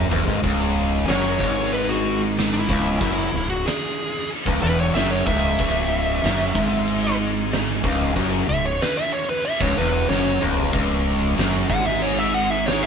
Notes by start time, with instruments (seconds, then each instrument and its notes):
0.10 fingered electric bass E1, distorted electric guitar E2, floor tom
0.26 fingered electric bass G#1, distorted electric guitar G#2, floor tom
0.43 fingered electric bass C#1, distorted electric guitar C#2, kick, crash
0.78 snare
1.06 fingered electric bass F#1, distorted electric guitar F#2, lead electric guitar C#5, crash
1.10 snare
1.40 fingered electric bass G#1, distorted electric guitar G#2, kick
1.59 snare
1.73 lead electric guitar B4, crash
1.89 lead electric guitar F#4
2.37 snare, crash
2.53 lead electric guitar E4
2.68 fingered electric bass C#1, distorted electric guitar C#2, kick
3.00 fingered electric bass F#1, distorted electric guitar F#2, kick, crash
3.33 fingered electric bass C#1, distorted electric guitar C#2, snare
3.50 lead electric guitar F#4
3.66 lead electric guitar G#4, snare, crash
4.17 snare
4.30 crash
4.46 fingered electric bass C#1, distorted electric guitar C#2, kick
4.62 fingered electric bass E1, distorted electric guitar E2, lead electric guitar B4
4.79 lead electric guitar C#5
4.94 fingered electric bass F#1, distorted electric guitar F#2, lead electric guitar E5, snare, crash
5.11 lead electric guitar C#5
5.26 fingered electric bass C#1, distorted electric guitar C#2, lead electric guitar E5, kick
5.59 fingered electric bass C#1, distorted electric guitar C#2, kick, crash
6.23 fingered electric bass F#1, distorted electric guitar F#2, snare, crash
6.55 fingered electric bass G#1, distorted electric guitar G#2, kick
6.88 crash
7.51 snare, crash
7.83 fingered electric bass C#1, distorted electric guitar C#2, kick
8.16 fingered electric bass F#1, distorted electric guitar F#2, kick, crash
8.48 fingered electric bass C#1, distorted electric guitar C#2, lead electric guitar E5
8.66 lead electric guitar C#5
8.80 lead electric guitar B4, snare, crash
8.97 lead electric guitar E5
9.13 lead electric guitar C#5
9.29 lead electric guitar B4, snare
9.45 lead electric guitar E5, crash
9.61 fingered electric bass C#1, distorted electric guitar C#2, lead electric guitar C#5, kick
9.77 fingered electric bass E1, distorted electric guitar E2, lead electric guitar B4
10.09 fingered electric bass F#1, distorted electric guitar F#2, lead electric guitar C#5, snare
10.41 fingered electric bass C#1, distorted electric guitar C#2, mid tom
10.57 floor tom
10.72 fingered electric bass C#1, distorted electric guitar C#2, kick, crash
11.07 snare
11.37 fingered electric bass F#1, distorted electric guitar F#2, snare, crash
11.69 fingered electric bass G#1, distorted electric guitar G#2, lead electric guitar F#5, kick
11.86 lead electric guitar E5, snare
12.02 lead electric guitar C#5, crash
12.18 lead electric guitar E5
12.34 lead electric guitar F#5
12.50 lead electric guitar E5
12.66 lead electric guitar C#5, snare, crash
12.83 lead electric guitar E5